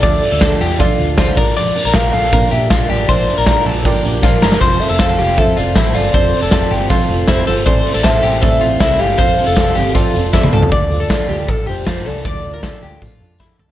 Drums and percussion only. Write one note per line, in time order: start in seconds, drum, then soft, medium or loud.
0.03 kick loud
0.03 hi-hat pedal medium
0.03 open hi-hat medium
0.22 hi-hat pedal medium
0.22 open hi-hat medium
0.41 kick loud
0.41 snare loud
0.41 hi-hat pedal medium
0.41 open hi-hat medium
0.61 hi-hat pedal medium
0.61 open hi-hat medium
0.80 kick loud
0.80 hi-hat pedal medium
0.80 open hi-hat medium
0.98 hi-hat pedal medium
0.98 open hi-hat medium
1.18 kick loud
1.18 snare loud
1.18 hi-hat pedal medium
1.18 open hi-hat medium
1.37 kick loud
1.37 hi-hat pedal medium
1.37 open hi-hat medium
1.56 hi-hat pedal medium
1.56 open hi-hat medium
1.75 hi-hat pedal medium
1.75 open hi-hat medium
1.94 kick loud
1.94 snare loud
1.94 hi-hat pedal medium
1.94 open hi-hat medium
2.14 hi-hat pedal medium
2.14 open hi-hat medium
2.33 kick loud
2.33 hi-hat pedal medium
2.33 open hi-hat medium
2.51 hi-hat pedal medium
2.51 open hi-hat medium
2.70 kick loud
2.70 snare loud
2.70 hi-hat pedal medium
2.70 open hi-hat medium
2.90 hi-hat pedal medium
2.90 open hi-hat medium
3.09 kick loud
3.09 hi-hat pedal medium
3.09 open hi-hat medium
3.28 hi-hat pedal medium
3.28 open hi-hat medium
3.46 kick loud
3.46 snare loud
3.46 hi-hat pedal medium
3.46 open hi-hat medium
3.66 hi-hat pedal medium
3.66 open hi-hat medium
3.85 kick loud
3.85 hi-hat pedal medium
3.85 open hi-hat medium
4.04 hi-hat pedal medium
4.04 open hi-hat medium
4.23 kick loud
4.23 snare medium
4.42 snare loud
4.52 snare loud
4.61 kick loud
4.61 hi-hat pedal medium
4.61 open hi-hat medium
4.81 hi-hat pedal medium
4.81 open hi-hat medium
4.99 kick loud
4.99 snare loud
4.99 hi-hat pedal medium
4.99 open hi-hat medium
5.19 hi-hat pedal medium
5.19 open hi-hat medium
5.38 kick loud
5.38 hi-hat pedal medium
5.38 open hi-hat medium
5.57 hi-hat pedal medium
5.57 open hi-hat medium
5.76 kick loud
5.76 snare loud
5.76 hi-hat pedal medium
5.76 open hi-hat medium
5.95 hi-hat pedal medium
5.95 open hi-hat medium
6.14 kick loud
6.14 hi-hat pedal medium
6.14 open hi-hat medium
6.33 hi-hat pedal medium
6.33 open hi-hat medium
6.51 kick loud
6.51 snare loud
6.51 hi-hat pedal medium
6.51 open hi-hat medium
6.71 hi-hat pedal medium
6.71 open hi-hat medium
6.90 kick loud
6.90 hi-hat pedal medium
6.90 open hi-hat medium
7.09 hi-hat pedal medium
7.09 open hi-hat medium
7.28 kick loud
7.28 snare loud
7.28 hi-hat pedal medium
7.28 open hi-hat medium
7.47 hi-hat pedal medium
7.47 open hi-hat medium
7.66 kick loud
7.66 hi-hat pedal medium
7.66 open hi-hat medium
7.86 hi-hat pedal medium
7.86 open hi-hat medium
8.04 kick loud
8.04 snare loud
8.04 hi-hat pedal medium
8.04 open hi-hat medium
8.24 hi-hat pedal medium
8.24 open hi-hat medium
8.43 kick loud
8.43 hi-hat pedal medium
8.43 open hi-hat medium
8.62 hi-hat pedal medium
8.62 open hi-hat medium
8.80 kick loud
8.80 snare loud
8.80 hi-hat pedal medium
8.80 open hi-hat medium
9.00 hi-hat pedal medium
9.00 open hi-hat medium
9.19 kick loud
9.19 hi-hat pedal medium
9.19 open hi-hat medium
9.38 hi-hat pedal medium
9.38 open hi-hat medium
9.57 kick loud
9.57 snare loud
9.57 hi-hat pedal medium
9.57 open hi-hat medium
9.76 hi-hat pedal medium
9.76 open hi-hat medium
9.95 kick loud
9.95 hi-hat pedal medium
9.95 open hi-hat medium
10.14 hi-hat pedal medium
10.14 open hi-hat medium
10.34 kick loud
10.34 snare medium
10.43 high tom medium
10.53 mid tom loud
10.63 floor tom loud
10.72 kick medium
10.72 closed hi-hat medium
10.91 open hi-hat medium
11.10 kick loud
11.10 snare loud
11.10 closed hi-hat medium
11.29 open hi-hat medium
11.49 kick loud
11.49 closed hi-hat medium
11.68 open hi-hat medium
11.87 kick loud
11.87 snare loud
11.87 closed hi-hat medium
12.06 open hi-hat medium
12.25 kick loud
12.25 closed hi-hat medium
12.63 kick loud
12.63 snare loud
12.63 closed hi-hat medium
13.02 kick medium
13.02 closed hi-hat medium
13.40 kick medium
13.40 snare soft
13.59 mid tom medium